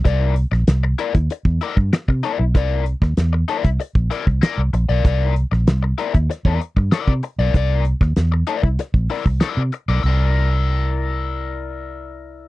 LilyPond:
<<
  \new Staff \with { instrumentName = "Overdriven electric guitar" } { \time 4/4 \key c \mixolydian \tempo 4 = 96 <e' bes' d''>8 r4 <e' bes' d''>16 r8. <e' bes' d''>16 r8. <e' bes' d''>16 r16 | <e' bes' d''>8 r4 <e' bes' d''>16 r8. <e' bes' d''>16 r16 <e' bes' d''>16 r8 <e' bes' d''>16 | <e' bes' d''>8 r4 <e' bes' d''>16 r8 <e' bes' d''>16 r8 <e' bes' d''>16 r8 <e' bes' d''>16 | <e' bes' d''>8 r4 <e' bes' d''>16 r8. <e' bes' d''>16 r16 <e' bes' d''>16 r8 <e' bes' d''>16 |
<e' bes' d''>1 | }
  \new Staff \with { instrumentName = "Fingered electric bass" } { \clef bass \time 4/4 \key c \mixolydian c,8. bes,,16 c,8 r16 ees,16 r16 e,16 r16 g,16 r16 c16 r16 b,,16 | c,8. ees,16 e,8 r16 c,16 r16 bes,,16 r16 c,16 r16 c,16 bes,,16 b,,16 | c,8. bes,,16 c,8 r16 ees,16 r16 e,16 r16 g,16 r16 c16 r16 b,,16 | c,8. ees,16 e,8 r16 c,16 r16 bes,,16 r16 c,16 r16 c16 r16 b,,16 |
c,1 | }
  \new DrumStaff \with { instrumentName = "Drums" } \drummode { \time 4/4 <hh bd>8 hh16 sn16 <hh sn>8 hh16 <hh bd>16 hh16 bd16 hh16 bd16 <hh sn>16 bd16 hh8 | <hh bd>8 hh16 <bd sn>16 <hh sn>8 hh16 <hh bd>16 hh16 bd16 hh16 bd16 <hh sn>8 hh8 | <hh bd>8 hh16 sn16 <hh sn>8 hh16 <hh bd>16 <hh sn>16 bd16 hh16 bd16 <hh sn>16 bd16 hh8 | <hh bd>8 hh16 <bd sn>16 <hh sn>8 hh16 bd16 <hh sn>16 bd16 hho16 bd16 <hh sn>8 hh8 |
r4 r4 r4 r4 | }
>>